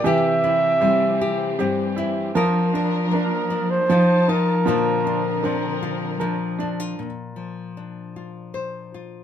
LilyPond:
<<
  \new Staff \with { instrumentName = "Flugelhorn" } { \time 3/4 \key bes \major \tempo 4 = 78 e''2 r4 | r4 bes'8. c''8. bes'8~ | bes'2 r4 | r2. | }
  \new Staff \with { instrumentName = "Felt piano" } { \time 3/4 \key bes \major <e g'>8 e'8 <c' e' g'>4 g'8 e'8 | <f bes'>8 d'8 <bes d' bes'>4 f8 ees'8 | <f bes'>8 d'8 <c' d' bes'>4 bes'8 d'8 | r2. | }
  \new Staff \with { instrumentName = "Nylon-string guitar" } { \time 3/4 \key bes \major << { g'8 e'4 g'8 c'8 e'8 | bes'8 bes'4 d'8 <ees' f'>8 f'8 | <f d' f'>8 f'4 f'8 d'8 d'16 f'16 | r4 d'8 f'8 c''8 f'8 | } \\ { c4 g4 g,4 | f4 bes4 f4 | bes,4 f4 f4 | bes,8 f2~ f8 | } >> }
  \new Staff \with { instrumentName = "String section" } { \time 3/4 \key bes \major << { <c' g'>2. | <d' bes'>2 <ees' a''>4 | <c' bes'>2. | r2. | } \\ { e2. | f2. | d2. | r2. | } >> }
>>